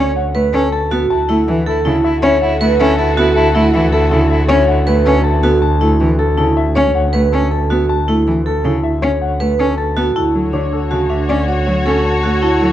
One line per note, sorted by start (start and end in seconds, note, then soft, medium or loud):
0.00 0.98 D2 medium
0.00 0.11 C#4 loud
0.00 0.21 C#5 medium
0.00 0.22 C#5 loud
0.16 0.40 F#5 medium
0.35 0.49 A3 medium
0.35 0.59 B4 loud
0.35 0.59 B4 medium
0.53 0.67 C#4 loud
0.53 0.78 A4 loud
0.72 0.97 A4 medium
0.72 0.97 A5 medium
0.91 1.05 B3 medium
0.91 1.16 F#4 loud
0.91 1.16 A4 medium
1.10 10.04 D2 medium
1.10 1.23 E4 soft
1.10 5.40 F#4 medium
1.10 5.41 A4 medium
1.10 1.35 A5 loud
1.29 1.43 A3 medium
1.29 1.42 E4 medium
1.29 1.53 E4 medium
1.29 1.54 A4 medium
1.48 1.62 E3 medium
1.48 1.61 E4 medium
1.48 1.73 B4 medium
1.66 1.80 E4 medium
1.66 1.91 A4 loud
1.85 2.00 C#3 medium
1.85 2.10 E4 medium
1.85 1.99 E4 medium
1.85 2.10 A5 medium
2.04 2.18 E4 medium
2.04 2.29 E5 medium
2.23 2.37 C#4 loud
2.23 2.37 E4 medium
2.23 2.48 C#5 loud
2.23 2.48 C#5 medium
2.42 2.56 E4 loud
2.42 2.67 F#5 medium
2.61 2.75 A3 medium
2.61 2.74 E4 medium
2.61 2.86 B4 loud
2.61 2.86 B4 medium
2.79 2.94 C#4 loud
2.79 2.93 E4 loud
2.79 3.05 A4 loud
2.98 3.12 E4 medium
2.98 3.23 A4 medium
2.98 3.23 A5 medium
3.17 3.31 B3 medium
3.17 3.31 E4 loud
3.17 3.42 F#4 loud
3.17 3.42 A4 medium
3.36 3.49 E4 loud
3.36 3.61 A5 loud
3.55 3.69 A3 loud
3.55 3.80 E4 medium
3.55 3.68 E4 loud
3.55 3.80 A4 loud
3.73 3.88 E3 loud
3.73 3.87 E4 medium
3.73 3.99 B4 medium
3.92 4.06 E4 medium
3.92 4.17 A4 medium
3.92 4.18 A4 loud
4.11 4.26 C#3 medium
4.11 4.36 E4 medium
4.11 4.25 E4 medium
4.11 4.37 A5 medium
4.30 4.44 E4 medium
4.30 4.55 E5 medium
4.48 4.63 C#4 loud
4.48 4.63 E4 medium
4.48 4.74 C#5 loud
4.48 4.74 C#5 medium
4.68 4.82 E4 medium
4.68 4.93 F#5 medium
4.86 5.01 A3 medium
4.86 5.00 E4 medium
4.86 5.12 B4 medium
4.86 5.12 B4 loud
5.05 5.20 C#4 loud
5.05 5.19 E4 medium
5.05 5.31 A4 medium
5.24 5.38 E4 soft
5.24 5.49 A4 medium
5.24 5.49 A5 loud
5.43 5.58 B3 medium
5.43 5.68 F#4 loud
5.43 5.68 A4 medium
5.62 5.87 A5 loud
5.81 5.96 A3 medium
5.81 6.06 E4 medium
5.81 6.06 A4 medium
6.00 6.15 E3 medium
6.00 6.25 B4 medium
6.19 6.44 A4 loud
6.19 6.44 A4 medium
6.38 6.52 C#3 medium
6.38 6.63 E4 medium
6.38 6.63 A5 medium
6.57 6.82 E5 medium
6.75 6.90 C#4 loud
6.75 7.00 C#5 medium
6.75 7.01 C#5 loud
6.95 7.20 F#5 medium
7.13 7.28 A3 medium
7.13 7.38 B4 loud
7.13 7.38 B4 medium
7.32 7.47 C#4 loud
7.32 7.57 A4 loud
7.51 7.76 A4 medium
7.51 7.76 A5 medium
7.70 7.85 B3 medium
7.70 7.95 F#4 loud
7.70 7.95 A4 medium
7.89 8.14 A5 loud
8.08 8.22 A3 medium
8.08 8.33 E4 medium
8.08 8.33 A4 medium
8.27 8.41 E3 medium
8.27 8.52 B4 medium
8.46 8.71 A4 medium
8.46 8.71 A4 loud
8.65 8.79 C#3 medium
8.65 8.90 E4 medium
8.65 8.90 A5 medium
8.84 9.08 E5 medium
9.02 9.17 C#4 medium
9.02 9.27 C#5 loud
9.02 9.27 C#5 medium
9.22 9.46 F#5 medium
9.40 9.55 A3 medium
9.40 9.65 B4 loud
9.40 9.65 B4 medium
9.59 9.73 C#4 loud
9.59 9.84 A4 medium
9.78 10.03 A4 medium
9.78 10.02 A5 medium
9.97 10.11 B3 medium
9.97 10.21 F#4 loud
9.97 10.22 A4 medium
10.16 12.72 D2 medium
10.16 10.40 E4 medium
10.16 12.72 F#4 medium
10.16 12.72 C#5 medium
10.16 10.40 A5 loud
10.35 10.49 F#3 medium
10.35 10.59 A4 medium
10.53 10.68 D3 medium
10.53 10.78 D4 medium
10.53 10.78 C#5 medium
10.73 10.97 A4 medium
10.91 11.06 C#3 medium
10.91 11.16 F#4 medium
10.91 11.16 A5 medium
11.10 11.35 D4 medium
11.10 11.35 E5 medium
11.29 11.43 C#4 medium
11.29 11.53 D5 medium
11.48 11.72 C#5 medium
11.48 11.72 F#5 medium
11.67 11.81 F#3 medium
11.67 11.91 C#5 medium
11.85 12.00 C#4 medium
11.85 12.10 A4 medium
12.04 12.29 A5 medium
12.23 12.38 A3 medium
12.23 12.48 F#4 medium
12.23 12.48 A4 medium
12.42 12.67 E4 medium
12.42 12.67 A5 loud
12.61 12.72 F#3 medium
12.61 12.72 A4 medium